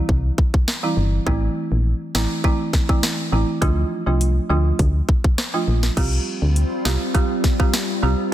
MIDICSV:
0, 0, Header, 1, 5, 480
1, 0, Start_track
1, 0, Tempo, 588235
1, 1033, Time_signature, 4, 2, 24, 8
1, 6804, End_track
2, 0, Start_track
2, 0, Title_t, "Ambient pad"
2, 0, Program_c, 0, 92
2, 4870, Note_on_c, 0, 65, 88
2, 4871, Note_on_c, 0, 55, 77
2, 4871, Note_on_c, 0, 60, 75
2, 6772, Note_off_c, 0, 65, 0
2, 6773, Note_off_c, 0, 55, 0
2, 6773, Note_off_c, 0, 60, 0
2, 6804, End_track
3, 0, Start_track
3, 0, Title_t, "Marimba"
3, 0, Program_c, 1, 12
3, 679, Note_on_c, 1, 52, 75
3, 680, Note_on_c, 1, 55, 65
3, 682, Note_on_c, 1, 60, 67
3, 684, Note_on_c, 1, 64, 80
3, 846, Note_off_c, 1, 52, 0
3, 847, Note_off_c, 1, 55, 0
3, 848, Note_off_c, 1, 60, 0
3, 849, Note_off_c, 1, 64, 0
3, 1031, Note_on_c, 1, 52, 90
3, 1033, Note_on_c, 1, 57, 83
3, 1035, Note_on_c, 1, 60, 79
3, 1036, Note_on_c, 1, 64, 96
3, 1698, Note_off_c, 1, 52, 0
3, 1699, Note_off_c, 1, 57, 0
3, 1700, Note_off_c, 1, 60, 0
3, 1701, Note_off_c, 1, 64, 0
3, 1751, Note_on_c, 1, 52, 73
3, 1752, Note_on_c, 1, 57, 69
3, 1754, Note_on_c, 1, 60, 68
3, 1756, Note_on_c, 1, 64, 79
3, 1974, Note_off_c, 1, 52, 0
3, 1974, Note_off_c, 1, 57, 0
3, 1975, Note_off_c, 1, 60, 0
3, 1976, Note_off_c, 1, 64, 0
3, 1991, Note_on_c, 1, 52, 84
3, 1992, Note_on_c, 1, 57, 82
3, 1994, Note_on_c, 1, 60, 81
3, 1996, Note_on_c, 1, 64, 98
3, 2167, Note_off_c, 1, 52, 0
3, 2168, Note_off_c, 1, 57, 0
3, 2169, Note_off_c, 1, 60, 0
3, 2169, Note_off_c, 1, 64, 0
3, 2359, Note_on_c, 1, 52, 76
3, 2360, Note_on_c, 1, 57, 70
3, 2362, Note_on_c, 1, 60, 68
3, 2364, Note_on_c, 1, 64, 83
3, 2685, Note_off_c, 1, 52, 0
3, 2686, Note_off_c, 1, 57, 0
3, 2687, Note_off_c, 1, 60, 0
3, 2688, Note_off_c, 1, 64, 0
3, 2711, Note_on_c, 1, 52, 78
3, 2713, Note_on_c, 1, 57, 68
3, 2714, Note_on_c, 1, 60, 71
3, 2717, Note_on_c, 1, 64, 89
3, 2934, Note_off_c, 1, 52, 0
3, 2935, Note_off_c, 1, 57, 0
3, 2935, Note_off_c, 1, 60, 0
3, 2937, Note_off_c, 1, 64, 0
3, 2950, Note_on_c, 1, 53, 88
3, 2952, Note_on_c, 1, 57, 78
3, 2954, Note_on_c, 1, 62, 78
3, 2955, Note_on_c, 1, 65, 100
3, 3288, Note_off_c, 1, 53, 0
3, 3289, Note_off_c, 1, 57, 0
3, 3290, Note_off_c, 1, 62, 0
3, 3291, Note_off_c, 1, 65, 0
3, 3317, Note_on_c, 1, 53, 73
3, 3319, Note_on_c, 1, 57, 65
3, 3320, Note_on_c, 1, 62, 66
3, 3322, Note_on_c, 1, 65, 78
3, 3486, Note_off_c, 1, 53, 0
3, 3486, Note_off_c, 1, 57, 0
3, 3487, Note_off_c, 1, 62, 0
3, 3488, Note_off_c, 1, 65, 0
3, 3670, Note_on_c, 1, 53, 71
3, 3672, Note_on_c, 1, 57, 64
3, 3673, Note_on_c, 1, 62, 63
3, 3675, Note_on_c, 1, 65, 78
3, 3846, Note_off_c, 1, 53, 0
3, 3848, Note_off_c, 1, 57, 0
3, 3848, Note_off_c, 1, 62, 0
3, 3849, Note_off_c, 1, 65, 0
3, 4517, Note_on_c, 1, 53, 70
3, 4519, Note_on_c, 1, 57, 67
3, 4521, Note_on_c, 1, 62, 68
3, 4522, Note_on_c, 1, 65, 83
3, 4686, Note_off_c, 1, 53, 0
3, 4686, Note_off_c, 1, 57, 0
3, 4687, Note_off_c, 1, 62, 0
3, 4688, Note_off_c, 1, 65, 0
3, 4871, Note_on_c, 1, 55, 83
3, 4872, Note_on_c, 1, 60, 83
3, 4874, Note_on_c, 1, 65, 78
3, 4876, Note_on_c, 1, 67, 96
3, 5538, Note_off_c, 1, 55, 0
3, 5538, Note_off_c, 1, 60, 0
3, 5539, Note_off_c, 1, 65, 0
3, 5540, Note_off_c, 1, 67, 0
3, 5590, Note_on_c, 1, 55, 72
3, 5592, Note_on_c, 1, 60, 65
3, 5594, Note_on_c, 1, 65, 66
3, 5595, Note_on_c, 1, 67, 79
3, 5814, Note_off_c, 1, 55, 0
3, 5814, Note_off_c, 1, 60, 0
3, 5815, Note_off_c, 1, 65, 0
3, 5816, Note_off_c, 1, 67, 0
3, 5830, Note_on_c, 1, 55, 89
3, 5832, Note_on_c, 1, 60, 82
3, 5834, Note_on_c, 1, 65, 79
3, 5835, Note_on_c, 1, 67, 97
3, 6007, Note_off_c, 1, 55, 0
3, 6007, Note_off_c, 1, 60, 0
3, 6008, Note_off_c, 1, 65, 0
3, 6009, Note_off_c, 1, 67, 0
3, 6197, Note_on_c, 1, 55, 75
3, 6199, Note_on_c, 1, 60, 70
3, 6201, Note_on_c, 1, 65, 67
3, 6203, Note_on_c, 1, 67, 82
3, 6524, Note_off_c, 1, 55, 0
3, 6525, Note_off_c, 1, 60, 0
3, 6526, Note_off_c, 1, 65, 0
3, 6527, Note_off_c, 1, 67, 0
3, 6550, Note_on_c, 1, 55, 78
3, 6551, Note_on_c, 1, 60, 71
3, 6553, Note_on_c, 1, 65, 72
3, 6555, Note_on_c, 1, 67, 82
3, 6773, Note_off_c, 1, 55, 0
3, 6774, Note_off_c, 1, 60, 0
3, 6775, Note_off_c, 1, 65, 0
3, 6776, Note_off_c, 1, 67, 0
3, 6804, End_track
4, 0, Start_track
4, 0, Title_t, "FM bass"
4, 0, Program_c, 2, 39
4, 72, Note_on_c, 2, 36, 104
4, 253, Note_off_c, 2, 36, 0
4, 792, Note_on_c, 2, 31, 98
4, 973, Note_off_c, 2, 31, 0
4, 1033, Note_on_c, 2, 33, 114
4, 1214, Note_off_c, 2, 33, 0
4, 1401, Note_on_c, 2, 34, 96
4, 1582, Note_off_c, 2, 34, 0
4, 1753, Note_on_c, 2, 33, 84
4, 1849, Note_off_c, 2, 33, 0
4, 2713, Note_on_c, 2, 33, 96
4, 2809, Note_off_c, 2, 33, 0
4, 2953, Note_on_c, 2, 38, 110
4, 3134, Note_off_c, 2, 38, 0
4, 3320, Note_on_c, 2, 36, 95
4, 3586, Note_off_c, 2, 36, 0
4, 3672, Note_on_c, 2, 38, 92
4, 3853, Note_off_c, 2, 38, 0
4, 3911, Note_on_c, 2, 38, 108
4, 4093, Note_off_c, 2, 38, 0
4, 4633, Note_on_c, 2, 34, 89
4, 4814, Note_off_c, 2, 34, 0
4, 4872, Note_on_c, 2, 36, 105
4, 5053, Note_off_c, 2, 36, 0
4, 5239, Note_on_c, 2, 38, 97
4, 5421, Note_off_c, 2, 38, 0
4, 5593, Note_on_c, 2, 36, 89
4, 5689, Note_off_c, 2, 36, 0
4, 6553, Note_on_c, 2, 36, 98
4, 6649, Note_off_c, 2, 36, 0
4, 6804, End_track
5, 0, Start_track
5, 0, Title_t, "Drums"
5, 72, Note_on_c, 9, 36, 88
5, 154, Note_off_c, 9, 36, 0
5, 311, Note_on_c, 9, 36, 97
5, 393, Note_off_c, 9, 36, 0
5, 440, Note_on_c, 9, 36, 96
5, 522, Note_off_c, 9, 36, 0
5, 553, Note_on_c, 9, 38, 109
5, 635, Note_off_c, 9, 38, 0
5, 1033, Note_on_c, 9, 36, 109
5, 1115, Note_off_c, 9, 36, 0
5, 1753, Note_on_c, 9, 38, 119
5, 1834, Note_off_c, 9, 38, 0
5, 1992, Note_on_c, 9, 36, 93
5, 2074, Note_off_c, 9, 36, 0
5, 2231, Note_on_c, 9, 36, 94
5, 2233, Note_on_c, 9, 38, 63
5, 2313, Note_off_c, 9, 36, 0
5, 2314, Note_off_c, 9, 38, 0
5, 2360, Note_on_c, 9, 36, 93
5, 2441, Note_off_c, 9, 36, 0
5, 2474, Note_on_c, 9, 38, 111
5, 2555, Note_off_c, 9, 38, 0
5, 2953, Note_on_c, 9, 36, 112
5, 2953, Note_on_c, 9, 42, 62
5, 3034, Note_off_c, 9, 36, 0
5, 3035, Note_off_c, 9, 42, 0
5, 3434, Note_on_c, 9, 42, 73
5, 3516, Note_off_c, 9, 42, 0
5, 3910, Note_on_c, 9, 42, 62
5, 3911, Note_on_c, 9, 36, 88
5, 3992, Note_off_c, 9, 42, 0
5, 3993, Note_off_c, 9, 36, 0
5, 4150, Note_on_c, 9, 36, 95
5, 4232, Note_off_c, 9, 36, 0
5, 4279, Note_on_c, 9, 36, 91
5, 4361, Note_off_c, 9, 36, 0
5, 4391, Note_on_c, 9, 37, 91
5, 4391, Note_on_c, 9, 38, 109
5, 4391, Note_on_c, 9, 42, 78
5, 4473, Note_off_c, 9, 37, 0
5, 4473, Note_off_c, 9, 38, 0
5, 4473, Note_off_c, 9, 42, 0
5, 4757, Note_on_c, 9, 38, 71
5, 4839, Note_off_c, 9, 38, 0
5, 4872, Note_on_c, 9, 36, 111
5, 4872, Note_on_c, 9, 42, 60
5, 4873, Note_on_c, 9, 49, 90
5, 4954, Note_off_c, 9, 36, 0
5, 4954, Note_off_c, 9, 42, 0
5, 4954, Note_off_c, 9, 49, 0
5, 5354, Note_on_c, 9, 42, 76
5, 5436, Note_off_c, 9, 42, 0
5, 5592, Note_on_c, 9, 38, 122
5, 5674, Note_off_c, 9, 38, 0
5, 5831, Note_on_c, 9, 36, 90
5, 5831, Note_on_c, 9, 42, 66
5, 5913, Note_off_c, 9, 36, 0
5, 5913, Note_off_c, 9, 42, 0
5, 6070, Note_on_c, 9, 36, 92
5, 6072, Note_on_c, 9, 38, 65
5, 6152, Note_off_c, 9, 36, 0
5, 6154, Note_off_c, 9, 38, 0
5, 6199, Note_on_c, 9, 36, 89
5, 6281, Note_off_c, 9, 36, 0
5, 6312, Note_on_c, 9, 38, 105
5, 6312, Note_on_c, 9, 42, 76
5, 6394, Note_off_c, 9, 38, 0
5, 6394, Note_off_c, 9, 42, 0
5, 6804, End_track
0, 0, End_of_file